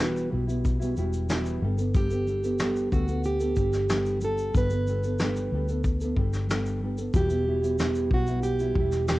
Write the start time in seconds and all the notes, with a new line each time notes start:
Already playing: E1 B4
0.00 E2 E3 G3 B3 E4 F#4, snare
0.17 shaker
0.31 B1 G3 B3 E4 F#4
0.47 G3 B3 E4 F#4, shaker
0.65 kick, shaker
0.79 G3 B3 E4 F#4, shaker
0.97 E1 G3 B3 E4 F#4, shaker
1.13 shaker
1.29 E2 E3 G3 B3 E4 F#4, snare, shaker
1.46 shaker
1.62 G1 G3 B3 D4 A4
1.78 B3 D4 A4, shaker
1.95 G3 B3 D4 G4 A4, kick, shaker
2.10 B3 D4 A4, shaker
2.27 G3 B3 D4 A4, shaker
2.44 B3 D4 A4, shaker
2.59 G3 B3 D4 A4, snare, shaker
2.76 shaker
2.91 D2 G3 B3 D4 F#4 A4, kick, shaker
3.08 B3 D4 A4, shaker
3.24 G4, shaker
3.40 B3 D4 A4, shaker
3.56 G1 G3 B3 D4 A4, kick, shaker
3.73 snare, shaker
3.89 G3 B3 D4 A4, snare, shaker
4.06 shaker
4.21 G3 B3 D4 A4, shaker
4.38 shaker
4.53 G1 G3 B3 D4 A4 B4, kick, shaker
4.70 B3 D4 A4, shaker
4.87 G3 B3 D4 A4, shaker
5.03 B3 D4 A4, shaker
5.19 G3 B3 D4 A4, snare, shaker
5.36 shaker
5.52 D2 G3 B3 D4 A4
5.68 B3 D4 A4, shaker
5.84 kick, shaker
6.01 B3 D4 A4, shaker
6.16 G1 G3 B3 D4 A4, kick
6.33 snare, shaker
6.49 G3 B3 D4 A4, snare, shaker
6.66 shaker
6.82 G3 B3 D4 A4
6.98 B3 D4 A4, shaker
7.14 E1 E2 E3 G3 B3 E4 F#4 G4, kick, shaker
7.29 G3 B3 E4 F#4, shaker
7.46 G3 B3 E4 F#4
7.62 G3 B3 E4 F#4, shaker
7.78 E2 E3 G3 B3 E4, snare, shaker
7.95 shaker
8.11 B1 G3 B3 E4 F#4, kick
8.27 G3 B3 E4 F#4, shaker
8.43 G4, shaker
8.59 G3 B3 E4 F#4, shaker
8.75 E1 G3 B3 E4, kick
8.92 snare, shaker
9.08 E2 E3 G3 B3 E4 G4, snare, shaker